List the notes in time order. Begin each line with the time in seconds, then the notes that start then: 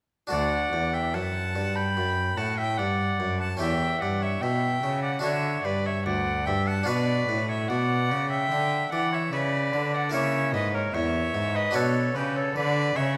0.27 D2 D4 F#4 A4
0.31 D2 D5 F#5
0.73 E2
0.93 E5 G5
1.14 F#2 F#5 A5
1.55 G2
1.76 G5 B5
1.96 F#2
2.37 A2 F#5 A5
2.58 E5 G5
2.78 G2 D5 F#5
3.19 F#2
3.40 F#5 A5
3.57 E2 C#4 E4 G4 E5 G5
3.62 E2
4.01 G2 D5 F#5
4.22 C#5 E5
4.41 B2 E5 G5
4.82 C#3
5.02 D5 F#5
5.19 D4 F#4 A4 E5
5.23 D3 C#5
5.64 G2 B4 D5
5.86 C#5 E5
6.06 D2 D5 F#5
6.46 G2 E5 G5
6.67 F#5 A5
6.83 D4 F#4 B4 D5
6.88 B2
7.29 A2
7.48 C#5 E5
7.68 B2 D5 F#5
8.11 C#3
8.30 E5 G5
8.51 D3
8.92 E3 D5 F#5
9.12 C#5 E5
9.32 C#3 B4 D5
9.73 D3
9.93 D5 F#5
10.09 A#3 E4 A#4 C#5
10.14 C#3 E5
10.53 G#2 B4 D#5
10.74 A#4 C#5
10.94 E2 C#5 E5
11.35 G#2
11.55 B4 D#5
11.71 D4 F#4 B4 C#5
11.75 B2 A4
12.15 C#3 G4 B4
12.36 A4 C#5
12.55 D3 B4 D5
12.96 C#3 C#5 E5